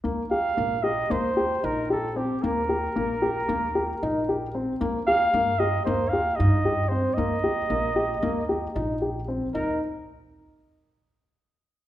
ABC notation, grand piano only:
X:1
M:9/8
L:1/8
Q:3/8=76
K:Eb
V:1 name="Grand piano"
B, G B, G B, G E G C | B, G B, G B, G E G C | B, G B, G B, G E G C | B, G B, G B, G E G C |
E z8 |]